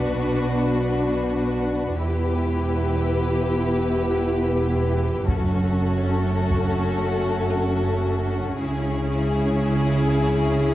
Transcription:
Already playing: B1 B2 D4 F#4 B4
1.97 E1 E2 B3 E4 G4 B4
5.27 F#1 F#2 A3 C#4 F#4 A4, taiko
6.52 taiko
8.56 C#2 C#3 G#3 C#4 E4 G#4

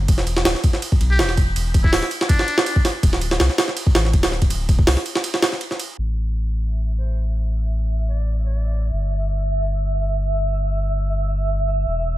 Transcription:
0.08 E1, kick, ride
0.18 snare
0.27 ride
0.37 snare
0.45 D1, snare, ride
0.55 snare
0.64 kick, ride
0.73 snare
0.82 ride
0.92 kick
1.01 B1, ride
1.10 G4
1.19 E1, snare, ride
1.29 snare
1.37 kick, ride
1.56 E1, ride
1.74 kick, ride
1.84 E4, kick
1.93 D1, snare, open hi-hat
2.03 snare
2.11 ride
2.21 snare
2.29 D4, kick, ride
2.39 snare
2.48 ride
2.58 snare
2.66 ride
2.76 kick
2.85 snare, ride
3.03 D1, kick, ride
3.13 snare
3.21 ride
3.31 snare
3.40 C2, snare, ride
3.50 snare
3.58 snare, ride
3.68 snare
3.77 ride
3.87 kick
3.95 A1, snare, ride
4.05 snare
4.13 D1, kick, ride
4.23 snare, ride
4.32 snare
4.42 kick, ride
4.50 D1, ride
4.69 kick, ride
4.79 kick
4.87 C2, snare, open hi-hat
4.97 snare
5.06 ride
5.15 snare
5.24 ride
5.34 snare
5.42 snare, ride
5.52 snare
5.61 ride
5.71 snare
5.79 ride
5.97 A1 E5
6.99 C5
8.10 D5
8.46 D5
8.92 G1
11.87 E1

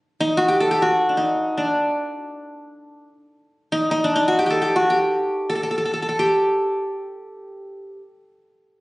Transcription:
0.20 D#4
0.37 F#4
0.48 G4
0.60 A4
0.71 G4
0.82 F#4
1.09 D4
1.17 D#4
1.58 D4
3.72 D#4
3.91 D#4
4.04 D4
4.16 D#4
4.28 F#4
4.39 G4
4.46 G4
4.50 A4
4.62 G4
4.76 F#4
4.90 G4
5.50 A4
5.55 A4
5.63 A4
5.71 A4
5.78 A4
5.86 A4
5.94 A4
6.02 A4
6.09 A4
6.19 G4

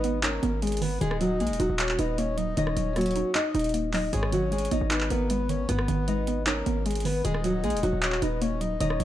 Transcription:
Already playing: G#1 G#2 D#3 G#3 D#4 B4 D#5
0.04 B3, closed hi-hat
0.23 C#4 D#4 A#4 C#5, clap, closed hi-hat
0.43 G#1 B3, closed hi-hat
0.62 G#3 G#4, closed hi-hat
0.67 closed hi-hat
0.72 closed hi-hat
0.77 closed hi-hat
0.81 D#3 B3 B4, open hi-hat
1.01 D#1 D#3 G#3 G#4 D#5, closed hi-hat
1.11 cross-stick
1.21 F#3 F#4, closed hi-hat
1.40 A#1 G#3 A#3 G#4, closed hi-hat
1.47 D#1, closed hi-hat
1.53 closed hi-hat
1.60 D#1 F#3 D#4 F#4, closed hi-hat
1.69 D#1
1.79 C#5 D#5, clap, closed hi-hat
1.89 clap
1.99 D#1 D#4 B4 D#5, closed hi-hat
2.18 A#3 C#5, closed hi-hat
2.38 F#3 D#5, closed hi-hat
2.57 D#1 D#3 D#4 C#5 D#5, closed hi-hat
2.67 cross-stick
2.76 D#1 F#3, closed hi-hat
2.96 F#3 A#3 F#4, cross-stick, closed hi-hat
3.01 closed hi-hat
3.06 closed hi-hat
3.11 closed hi-hat
3.16 D#4, closed hi-hat
3.35 D#4 D#5, clap, closed hi-hat
3.55 D#1 D#4, closed hi-hat
3.59 closed hi-hat
3.64 closed hi-hat
3.69 closed hi-hat
3.74 A#3, closed hi-hat
3.93 F#3 D#4 D#5, clap, open hi-hat
4.13 G#1 G#2 G#3 G#4 C#5, closed hi-hat
4.23 cross-stick
4.32 D#3 F#3 F#4, closed hi-hat
4.51 G#3 G#4, closed hi-hat
4.58 closed hi-hat
4.65 closed hi-hat
4.71 G#1 B3 D#4 D#5, closed hi-hat
4.81 G#1
4.91 D#4 B4, clap, closed hi-hat
5.01 clap
5.10 G#1 B3 A#4 B4, closed hi-hat
5.30 G#3 B4, closed hi-hat
5.49 D#3 C#5, closed hi-hat
5.69 G#1 G#2 B3 B4, closed hi-hat
5.79 cross-stick
5.88 G#1 D#3, closed hi-hat
6.08 G#3 D#4 D#5, closed hi-hat
6.27 B3, closed hi-hat
6.47 C#4 D#4 A#4 C#5, clap, closed hi-hat
6.66 G#1 B3, closed hi-hat
6.86 G#3 G#4, closed hi-hat
6.91 closed hi-hat
6.95 closed hi-hat
7.00 closed hi-hat
7.05 D#3 B3 B4, open hi-hat
7.24 D#1 D#3 G#3 G#4 D#5, closed hi-hat
7.34 cross-stick
7.44 F#3 F#4, closed hi-hat
7.64 A#1 G#3 A#3 G#4, closed hi-hat
7.70 D#1, closed hi-hat
7.77 closed hi-hat
7.83 D#1 F#3 D#4 F#4, closed hi-hat
7.93 D#1
8.03 C#5 D#5, clap, closed hi-hat
8.12 clap
8.22 D#1 D#4 B4 D#5, closed hi-hat
8.42 A#3 C#5, closed hi-hat
8.61 F#3 D#5, closed hi-hat
8.80 D#1 D#3 D#4 C#5 D#5, closed hi-hat
8.90 cross-stick
9.00 D#1 F#3, closed hi-hat

